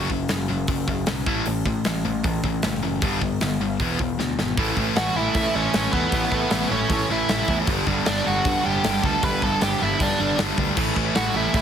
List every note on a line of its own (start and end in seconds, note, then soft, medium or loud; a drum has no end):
0.10 0.27 F#1 medium
0.10 0.28 F#2 medium
0.10 0.28 C#3 medium
0.10 0.28 F#3 medium
0.10 0.28 C#4 medium
0.10 kick medium
0.29 0.47 F#1 medium
0.29 0.48 F#2 medium
0.29 0.48 C#3 medium
0.29 0.47 F#3 medium
0.29 0.47 C#4 medium
0.29 snare loud
0.29 open hi-hat medium
0.48 0.66 F#1 medium
0.48 0.67 F#2 medium
0.48 0.67 C#3 medium
0.48 0.66 F#3 medium
0.48 0.67 C#4 medium
0.67 0.85 F#1 medium
0.67 0.87 F#2 medium
0.67 0.87 C#3 medium
0.67 0.86 F#3 medium
0.67 0.86 C#4 medium
0.67 kick loud
0.67 open hi-hat medium
0.88 1.04 F#1 medium
0.88 1.06 F#2 medium
0.88 1.06 C#3 medium
0.88 1.05 F#3 medium
0.88 1.06 C#4 medium
0.88 kick medium
1.06 1.24 B1 medium
1.06 1.25 F#2 medium
1.06 1.25 C#3 medium
1.06 1.25 F#3 medium
1.06 1.25 C#4 medium
1.06 snare loud
1.06 open hi-hat medium
1.26 1.43 A1 medium
1.26 1.45 A2 medium
1.26 1.45 E3 medium
1.26 1.45 A3 medium
1.26 1.45 C#4 medium
1.26 1.46 E4 medium
1.26 kick medium
1.46 1.63 A1 medium
1.46 1.65 A2 medium
1.46 1.65 E3 medium
1.46 1.64 A3 medium
1.46 1.64 C#4 medium
1.46 open hi-hat medium
1.65 1.82 A1 medium
1.65 1.84 A2 medium
1.65 1.84 E3 medium
1.65 1.84 A3 medium
1.65 1.84 C#4 medium
1.65 kick medium
1.84 2.02 A1 medium
1.84 2.03 A2 medium
1.84 2.03 E3 medium
1.84 2.03 A3 medium
1.84 2.04 C#4 medium
1.84 snare loud
1.84 open hi-hat medium
2.05 2.21 A1 medium
2.05 2.23 A2 medium
2.05 2.23 E3 medium
2.05 2.22 A3 medium
2.05 2.23 C#4 medium
2.24 2.41 A1 medium
2.24 2.42 A2 medium
2.24 2.42 E3 medium
2.24 2.42 A3 medium
2.24 2.42 C#4 medium
2.24 kick loud
2.24 open hi-hat medium
2.44 2.60 A1 medium
2.44 2.62 A2 medium
2.44 2.62 E3 medium
2.44 2.62 A3 medium
2.44 2.62 C#4 medium
2.44 kick medium
2.62 2.80 F#1 medium
2.62 2.81 A2 medium
2.62 2.81 E3 medium
2.62 2.81 A3 medium
2.62 2.82 C#4 medium
2.62 snare loud
2.62 open hi-hat medium
2.83 3.00 F#1 medium
2.83 3.00 A2 medium
2.83 3.00 E3 medium
2.83 3.00 A3 medium
2.83 3.01 C#4 medium
3.02 3.19 G1 medium
3.02 3.20 G2 medium
3.02 3.20 D3 medium
3.02 3.20 G3 medium
3.02 3.21 B3 medium
3.02 3.21 D4 loud
3.02 kick loud
3.02 open hi-hat medium
3.21 3.38 G1 medium
3.21 3.39 G2 medium
3.21 3.39 D3 medium
3.21 3.39 G3 medium
3.21 3.39 B3 medium
3.21 kick medium
3.41 3.58 G1 medium
3.41 3.59 G2 medium
3.41 3.59 D3 medium
3.41 3.59 G3 medium
3.41 3.59 B3 medium
3.41 snare loud
3.41 open hi-hat medium
3.59 3.76 G1 medium
3.59 3.79 G2 medium
3.59 3.79 D3 medium
3.59 3.78 G3 medium
3.59 3.79 B3 medium
3.80 3.96 E1 medium
3.80 3.98 E2 medium
3.80 3.99 B2 medium
3.80 3.99 E3 loud
3.80 3.99 B3 medium
3.80 3.99 E4 medium
3.80 kick loud
3.80 open hi-hat medium
3.99 4.16 E1 medium
3.99 4.18 E2 medium
3.99 4.18 B2 medium
3.99 4.18 E3 medium
3.99 4.18 B3 medium
3.99 kick medium
4.18 4.35 D2 medium
4.18 4.37 E2 medium
4.18 4.37 B2 medium
4.18 4.36 E3 medium
4.18 4.37 B3 medium
4.18 snare medium
4.37 4.54 G#1 medium
4.37 4.56 E2 medium
4.37 4.56 B2 medium
4.37 4.56 E3 medium
4.37 4.56 B3 medium
4.37 snare medium
4.57 4.70 A1 medium
4.57 4.77 A2 loud
4.57 4.77 E3 loud
4.57 4.78 A3 loud
4.57 4.78 C#4 loud
4.57 4.78 E4 loud
4.57 kick loud
4.57 open hi-hat medium
4.77 4.89 A1 medium
4.77 4.97 A2 medium
4.77 4.97 E3 medium
4.77 4.98 A3 medium
4.77 4.98 C#4 medium
4.77 4.98 E4 loud
4.77 kick medium
4.96 5.08 A1 loud
4.96 5.15 A2 medium
4.96 5.16 E3 medium
4.96 5.16 A3 medium
4.96 5.17 C#4 loud
4.96 5.17 E4 loud
4.96 5.15 F#4 medium
4.96 5.16 F#5 loud
4.96 snare loud
4.96 open hi-hat medium
5.15 5.27 A1 medium
5.15 5.34 A2 medium
5.15 5.35 E3 loud
5.15 5.35 A3 medium
5.15 5.35 C#4 loud
5.15 5.34 E4 medium
5.15 5.36 E4 loud
5.15 5.35 E5 loud
5.34 5.47 A2 medium
5.34 5.54 A2 medium
5.34 5.54 E3 loud
5.34 5.54 A3 loud
5.34 5.55 C#4 loud
5.34 5.55 E4 loud
5.34 5.54 E4 medium
5.34 5.55 E5 loud
5.34 kick loud
5.34 open hi-hat medium
5.54 5.66 A1 medium
5.54 5.73 A2 medium
5.54 5.73 E3 medium
5.54 5.74 A3 medium
5.54 5.91 C#4 medium
5.54 5.74 C#4 medium
5.54 5.74 E4 medium
5.54 5.95 C#5 medium
5.74 5.86 A1 medium
5.74 5.92 A2 medium
5.74 5.92 E3 medium
5.74 5.92 A3 medium
5.74 5.93 C#4 medium
5.74 5.93 E4 medium
5.74 snare loud
5.74 open hi-hat medium
5.92 6.05 E2 medium
5.92 6.11 A2 medium
5.92 6.11 E3 medium
5.92 6.12 A3 medium
5.92 6.67 B3 medium
5.92 6.12 C#4 loud
5.92 6.12 E4 loud
5.92 6.71 B4 medium
5.92 kick medium
6.12 6.25 A1 loud
6.12 6.30 A2 loud
6.12 6.31 E3 loud
6.12 6.31 A3 loud
6.12 6.31 C#4 loud
6.12 6.32 E4 loud
6.12 kick loud
6.12 open hi-hat medium
6.31 6.44 A1 medium
6.31 6.50 A2 medium
6.31 6.50 E3 medium
6.31 6.51 A3 medium
6.31 6.51 C#4 medium
6.31 6.51 E4 medium
6.31 kick medium
6.50 6.63 A1 medium
6.50 6.69 A2 medium
6.50 6.69 E3 medium
6.50 6.70 A3 medium
6.50 6.70 C#4 loud
6.50 6.70 E4 loud
6.50 snare loud
6.50 open hi-hat medium
6.70 6.83 A1 medium
6.70 6.88 A2 loud
6.70 6.88 E3 medium
6.70 6.89 A3 loud
6.70 6.89 C#4 loud
6.70 7.07 C#4 medium
6.70 6.89 E4 loud
6.70 7.07 C#5 medium
6.89 7.08 A2 loud
6.89 7.02 A2 medium
6.89 7.08 E3 loud
6.89 7.08 A3 loud
6.89 7.09 C#4 loud
6.89 7.09 E4 loud
6.89 kick loud
6.89 open hi-hat medium
7.09 7.22 A1 medium
7.09 7.27 A2 medium
7.09 7.28 E3 medium
7.09 7.28 A3 medium
7.09 7.29 C#4 loud
7.09 7.29 E4 medium
7.09 7.29 E5 medium
7.28 7.41 A1 medium
7.28 7.47 A2 medium
7.28 7.47 E3 medium
7.28 7.48 A3 medium
7.28 7.48 C#4 medium
7.28 7.57 E4 medium
7.28 7.48 E4 medium
7.28 7.57 E5 medium
7.28 snare loud
7.28 open hi-hat medium
7.48 7.60 E2 medium
7.48 7.66 A2 medium
7.48 7.67 E3 medium
7.48 7.67 A3 medium
7.48 7.67 C#4 loud
7.48 7.67 E4 medium
7.48 kick medium
7.67 7.79 G1 medium
7.67 7.87 G2 medium
7.67 7.86 D3 loud
7.67 7.87 G3 loud
7.67 7.88 B3 loud
7.67 7.88 D4 loud
7.67 kick loud
7.67 open hi-hat medium
7.87 7.99 G1 medium
7.87 8.06 G2 medium
7.87 8.06 D3 medium
7.87 8.07 G3 medium
7.87 8.08 B3 medium
7.87 8.08 D4 loud
7.87 kick medium
8.06 8.20 G1 medium
8.06 8.26 G2 medium
8.06 8.25 D3 medium
8.06 8.26 G3 medium
8.06 8.26 B3 medium
8.06 8.25 D4 medium
8.06 8.27 D4 loud
8.06 8.26 D5 medium
8.06 snare loud
8.06 open hi-hat medium
8.26 8.39 G1 medium
8.26 8.43 G2 loud
8.26 8.44 D3 medium
8.26 8.44 G3 loud
8.26 8.45 B3 medium
8.26 8.45 D4 loud
8.26 8.63 F#4 medium
8.26 8.65 F#5 loud
8.45 8.63 G2 loud
8.45 8.57 G2 loud
8.45 8.64 D3 loud
8.45 8.64 G3 loud
8.45 8.64 B3 loud
8.45 8.65 D4 loud
8.45 kick loud
8.45 open hi-hat medium
8.64 8.77 G1 medium
8.64 8.82 G2 medium
8.64 8.83 D3 medium
8.64 8.83 G3 medium
8.64 8.84 B3 medium
8.64 8.84 D4 loud
8.64 9.02 G4 medium
8.64 9.01 G5 loud
8.84 8.96 G1 medium
8.84 9.02 G2 medium
8.84 9.02 D3 medium
8.84 9.03 G3 loud
8.84 9.03 B3 medium
8.84 9.03 D4 loud
8.84 snare loud
8.84 open hi-hat medium
9.03 9.15 D2 medium
9.03 9.21 G2 medium
9.03 9.22 D3 medium
9.03 9.22 G3 loud
9.03 9.23 B3 medium
9.03 9.23 D4 loud
9.03 9.23 A4 medium
9.03 9.23 A5 medium
9.03 kick medium
9.22 9.35 G1 loud
9.22 9.40 G2 loud
9.22 9.41 D3 loud
9.22 9.41 G3 loud
9.22 9.41 B3 loud
9.22 9.42 D4 loud
9.22 9.41 B4 medium
9.22 9.44 B5 loud
9.22 kick loud
9.22 open hi-hat medium
9.41 9.54 G1 medium
9.41 9.60 G2 medium
9.41 9.60 D3 medium
9.41 9.61 G3 medium
9.41 9.61 B3 medium
9.41 9.62 D4 loud
9.41 9.61 A4 medium
9.41 9.63 A5 medium
9.41 kick medium
9.61 9.73 G1 loud
9.61 9.79 G2 medium
9.61 9.79 D3 medium
9.61 9.80 G3 medium
9.61 9.80 B3 loud
9.61 9.81 D4 loud
9.61 9.80 G4 medium
9.61 9.82 G5 medium
9.61 snare loud
9.61 open hi-hat medium
9.80 9.93 G1 medium
9.80 9.99 G2 medium
9.80 9.99 D3 loud
9.80 9.99 G3 medium
9.80 10.00 B3 medium
9.80 10.00 D4 medium
9.80 10.00 E4 medium
9.80 10.02 E5 medium
10.00 10.18 G2 loud
10.00 10.12 G2 medium
10.00 10.18 D3 loud
10.00 10.19 G3 loud
10.00 10.19 B3 loud
10.00 10.20 D4 loud
10.00 10.37 D4 medium
10.00 10.37 D5 medium
10.00 kick loud
10.00 open hi-hat medium
10.19 10.31 G1 medium
10.19 10.37 G2 medium
10.19 10.37 D3 medium
10.19 10.38 G3 medium
10.19 10.38 B3 medium
10.19 10.38 D4 medium
10.38 10.50 G1 medium
10.38 10.56 G2 medium
10.38 10.57 D3 medium
10.38 10.57 G3 medium
10.38 10.58 B3 medium
10.38 10.58 D4 loud
10.38 snare loud
10.38 open hi-hat medium
10.58 10.70 D2 medium
10.58 10.76 G2 medium
10.58 10.76 D3 medium
10.58 10.76 G3 medium
10.58 10.77 B3 medium
10.58 10.77 D4 medium
10.58 kick medium
10.77 10.89 A1 medium
10.77 10.96 A2 loud
10.77 10.96 E3 loud
10.77 10.96 A3 loud
10.77 10.97 C#4 loud
10.77 10.97 E4 loud
10.77 kick loud
10.77 crash loud
10.96 11.08 A1 medium
10.96 11.15 A2 medium
10.96 11.16 E3 medium
10.96 11.16 A3 medium
10.96 11.16 C#4 loud
10.96 11.16 E4 loud
10.96 kick medium
11.15 11.28 A1 medium
11.15 11.34 A2 loud
11.15 11.35 E3 medium
11.15 11.35 A3 medium
11.15 11.36 C#4 medium
11.15 11.36 E4 medium
11.15 11.34 F#4 medium
11.15 11.34 F#5 loud
11.15 snare loud
11.15 open hi-hat medium
11.35 11.47 A1 medium
11.35 11.52 A2 loud
11.35 11.53 E3 medium
11.35 11.53 A3 loud
11.35 11.54 C#4 loud
11.35 11.54 E4 loud
11.35 11.55 E4 medium
11.35 11.54 E5 loud
11.54 11.62 A2 medium
11.54 11.62 E3 medium
11.54 11.62 A3 loud
11.54 11.62 C#4 loud
11.54 11.62 E4 loud
11.54 11.62 E4 medium
11.54 11.62 E5 loud
11.54 kick loud
11.54 open hi-hat medium